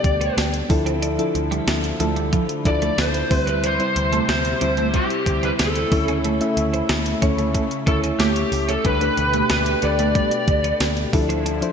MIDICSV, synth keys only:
0, 0, Header, 1, 2, 480
1, 0, Start_track
1, 0, Tempo, 652174
1, 754, Time_signature, 4, 2, 24, 8
1, 8628, End_track
2, 0, Start_track
2, 0, Title_t, "Synth keys"
2, 0, Program_c, 0, 88
2, 0, Control_c, 0, 64, 127
2, 0, Note_on_c, 0, 55, 63
2, 0, Note_on_c, 0, 59, 59
2, 0, Note_on_c, 0, 62, 59
2, 0, Note_on_c, 0, 67, 69
2, 0, Note_on_c, 0, 69, 73
2, 146, Note_off_c, 0, 55, 0
2, 147, Note_off_c, 0, 59, 0
2, 149, Note_off_c, 0, 62, 0
2, 150, Note_off_c, 0, 67, 0
2, 510, Note_on_c, 0, 53, 84
2, 511, Note_on_c, 0, 62, 77
2, 513, Note_on_c, 0, 64, 79
2, 518, Note_off_c, 0, 69, 0
2, 518, Note_on_c, 0, 69, 96
2, 524, Control_c, 0, 64, 0
2, 670, Control_c, 0, 64, 127
2, 800, Note_off_c, 0, 53, 0
2, 800, Note_off_c, 0, 62, 0
2, 801, Note_off_c, 0, 64, 0
2, 804, Note_off_c, 0, 69, 0
2, 871, Note_on_c, 0, 53, 79
2, 873, Note_on_c, 0, 62, 71
2, 875, Note_on_c, 0, 64, 73
2, 880, Note_on_c, 0, 69, 91
2, 1243, Note_off_c, 0, 53, 0
2, 1245, Note_off_c, 0, 62, 0
2, 1246, Note_off_c, 0, 64, 0
2, 1248, Note_off_c, 0, 69, 0
2, 1471, Note_on_c, 0, 53, 79
2, 1473, Note_on_c, 0, 62, 75
2, 1476, Note_on_c, 0, 64, 71
2, 1479, Note_on_c, 0, 69, 87
2, 1769, Note_off_c, 0, 53, 0
2, 1771, Note_off_c, 0, 62, 0
2, 1772, Note_off_c, 0, 64, 0
2, 1773, Note_off_c, 0, 69, 0
2, 1950, Note_on_c, 0, 53, 69
2, 1953, Note_on_c, 0, 62, 64
2, 1957, Note_on_c, 0, 64, 62
2, 1960, Note_on_c, 0, 69, 73
2, 2397, Note_off_c, 0, 53, 0
2, 2399, Note_off_c, 0, 62, 0
2, 2401, Note_off_c, 0, 64, 0
2, 2403, Note_off_c, 0, 69, 0
2, 2430, Note_on_c, 0, 55, 68
2, 2432, Note_on_c, 0, 60, 66
2, 2435, Note_on_c, 0, 64, 69
2, 2438, Note_on_c, 0, 72, 77
2, 2444, Control_c, 0, 64, 0
2, 2569, Control_c, 0, 64, 127
2, 2720, Note_off_c, 0, 55, 0
2, 2721, Note_off_c, 0, 60, 0
2, 2722, Note_off_c, 0, 64, 0
2, 2724, Note_off_c, 0, 72, 0
2, 2788, Note_on_c, 0, 55, 67
2, 2791, Note_on_c, 0, 60, 64
2, 2796, Note_on_c, 0, 64, 64
2, 2799, Note_on_c, 0, 72, 77
2, 3162, Note_off_c, 0, 55, 0
2, 3164, Note_off_c, 0, 60, 0
2, 3166, Note_off_c, 0, 64, 0
2, 3168, Note_off_c, 0, 72, 0
2, 3391, Note_on_c, 0, 55, 67
2, 3393, Note_on_c, 0, 60, 62
2, 3396, Note_on_c, 0, 64, 63
2, 3400, Note_on_c, 0, 72, 77
2, 3987, Note_off_c, 0, 55, 0
2, 3987, Note_off_c, 0, 60, 0
2, 3989, Note_off_c, 0, 64, 0
2, 3991, Note_off_c, 0, 72, 0
2, 4349, Note_on_c, 0, 57, 73
2, 4354, Note_on_c, 0, 61, 69
2, 4356, Note_on_c, 0, 64, 66
2, 4359, Note_on_c, 0, 73, 78
2, 4364, Control_c, 0, 64, 0
2, 4495, Control_c, 0, 64, 127
2, 4639, Note_off_c, 0, 57, 0
2, 4642, Note_off_c, 0, 61, 0
2, 4643, Note_off_c, 0, 64, 0
2, 4644, Note_off_c, 0, 73, 0
2, 4712, Note_on_c, 0, 57, 78
2, 4715, Note_on_c, 0, 61, 72
2, 4718, Note_on_c, 0, 64, 73
2, 4721, Note_on_c, 0, 76, 85
2, 5084, Note_off_c, 0, 57, 0
2, 5086, Note_off_c, 0, 61, 0
2, 5087, Note_off_c, 0, 64, 0
2, 5089, Note_off_c, 0, 76, 0
2, 5311, Note_on_c, 0, 57, 82
2, 5314, Note_on_c, 0, 61, 77
2, 5315, Note_on_c, 0, 64, 72
2, 5318, Note_on_c, 0, 73, 84
2, 5610, Note_off_c, 0, 57, 0
2, 5611, Note_off_c, 0, 61, 0
2, 5611, Note_off_c, 0, 64, 0
2, 5613, Note_off_c, 0, 73, 0
2, 5794, Note_on_c, 0, 57, 67
2, 5797, Note_on_c, 0, 61, 61
2, 5802, Note_on_c, 0, 64, 62
2, 5803, Note_on_c, 0, 73, 79
2, 6239, Note_off_c, 0, 57, 0
2, 6241, Note_off_c, 0, 61, 0
2, 6243, Note_off_c, 0, 64, 0
2, 6244, Note_off_c, 0, 73, 0
2, 6513, Note_on_c, 0, 57, 67
2, 6516, Note_on_c, 0, 62, 63
2, 6518, Note_on_c, 0, 67, 63
2, 6521, Note_on_c, 0, 71, 76
2, 6523, Control_c, 0, 64, 0
2, 6588, Note_off_c, 0, 57, 0
2, 6589, Note_off_c, 0, 62, 0
2, 6590, Note_off_c, 0, 67, 0
2, 6591, Note_off_c, 0, 71, 0
2, 6630, Note_on_c, 0, 57, 65
2, 6633, Note_on_c, 0, 62, 63
2, 6636, Note_on_c, 0, 67, 63
2, 6639, Note_on_c, 0, 71, 75
2, 6669, Control_c, 0, 64, 127
2, 7003, Note_off_c, 0, 57, 0
2, 7005, Note_off_c, 0, 62, 0
2, 7006, Note_off_c, 0, 67, 0
2, 7008, Note_off_c, 0, 71, 0
2, 7232, Note_on_c, 0, 57, 67
2, 7235, Note_on_c, 0, 62, 61
2, 7239, Note_on_c, 0, 67, 61
2, 7240, Note_on_c, 0, 71, 72
2, 7827, Note_off_c, 0, 57, 0
2, 7828, Note_off_c, 0, 62, 0
2, 7831, Note_off_c, 0, 67, 0
2, 7831, Note_off_c, 0, 71, 0
2, 8190, Note_on_c, 0, 53, 84
2, 8193, Note_on_c, 0, 62, 83
2, 8195, Note_on_c, 0, 64, 77
2, 8198, Note_on_c, 0, 69, 92
2, 8203, Control_c, 0, 64, 0
2, 8351, Control_c, 0, 64, 127
2, 8480, Note_off_c, 0, 53, 0
2, 8481, Note_off_c, 0, 62, 0
2, 8482, Note_off_c, 0, 64, 0
2, 8484, Note_off_c, 0, 69, 0
2, 8548, Note_on_c, 0, 53, 82
2, 8550, Note_on_c, 0, 62, 75
2, 8554, Note_on_c, 0, 64, 74
2, 8557, Note_on_c, 0, 72, 84
2, 8628, Note_off_c, 0, 53, 0
2, 8628, Note_off_c, 0, 62, 0
2, 8628, Note_off_c, 0, 64, 0
2, 8628, Note_off_c, 0, 72, 0
2, 8628, End_track
0, 0, End_of_file